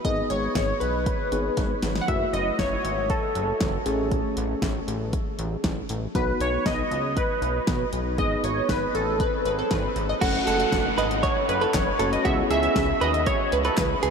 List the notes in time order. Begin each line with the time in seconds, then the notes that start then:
0.05 G#1 B3 D#4 G#4 D#5, kick, closed hi-hat
0.30 G#1 C#5, closed hi-hat
0.55 G#1 C#5, kick, snare, closed hi-hat
0.80 B1 B4, closed hi-hat
1.06 kick, closed hi-hat
1.32 G#1 B3 D#4 G#4, closed hi-hat
1.57 G#1, kick, snare, closed hi-hat
1.82 G#1, snare, closed hi-hat
1.96 snare
2.01 F#5
2.08 F#1 A3 E4 F#4 E5, kick, closed hi-hat
2.33 F#1 D#5, closed hi-hat
2.59 F#1 C#5, kick, snare, closed hi-hat
2.84 G#1, closed hi-hat
3.10 A4, kick, closed hi-hat
3.35 F#1, closed hi-hat
3.60 F#1, kick, snare, closed hi-hat
3.86 A1 A3 C#4 G#4, closed hi-hat
4.12 kick, closed hi-hat
4.37 A1, closed hi-hat
4.62 A1, kick, snare, closed hi-hat
4.88 A1, closed hi-hat
5.13 kick, closed hi-hat
5.39 A1, closed hi-hat
5.64 A1, kick, snare, closed hi-hat
5.89 A1, closed hi-hat
6.15 B1 B3 D#4 F#4 B4, kick, closed hi-hat, swell
6.40 B1 C#5, closed hi-hat
6.66 B1 D#5, kick, snare, closed hi-hat
6.91 C#2, closed hi-hat
7.17 B4, kick, closed hi-hat
7.42 B1, closed hi-hat
7.67 B1, kick, snare, closed hi-hat
7.93 B1, closed hi-hat
8.18 G#1 B3 D#4 G#4 D#5, kick, closed hi-hat
8.44 G#1 C#5, closed hi-hat
8.69 G#1 B4, kick, snare, closed hi-hat
8.94 A1 A4, closed hi-hat
9.20 B4, kick, closed hi-hat
9.45 G#1 B4, closed hi-hat
9.59 A4
9.71 G#1 B4, kick, snare, closed hi-hat
9.96 G#1, closed hi-hat
10.09 D#5
10.21 F#1 A3 C#4 F#4 A4 F#5, kick, closed hi-hat, crash, downlifter
10.47 F#1 A4 F#5, closed hi-hat
10.60 closed hi-hat
10.72 F#1, kick, snare, closed hi-hat
10.98 G#1 B4 D#5, closed hi-hat
11.11 closed hi-hat
11.23 C#5, kick, closed hi-hat
11.49 F#1 B4, closed hi-hat
11.61 A4 B4, closed hi-hat
11.74 F#1 C#5, kick, snare, clap, closed hi-hat
11.99 F#1 A3 C#4 F#4 A4, closed hi-hat
12.13 D#5, closed hi-hat
12.25 C#2 B3 C#4 E4 F#4 G#4 E5, kick, closed hi-hat
12.50 C#2 G#4 E5, closed hi-hat
12.63 closed hi-hat
12.76 C#2, kick, snare, closed hi-hat
13.01 D#2 B4 D#5, closed hi-hat
13.14 closed hi-hat
13.26 C#5, kick, closed hi-hat
13.52 C#2 B4, closed hi-hat
13.65 A4 B4, closed hi-hat
13.77 C#2 B4, kick, snare, clap, closed hi-hat
14.03 C#2 G#4, closed hi-hat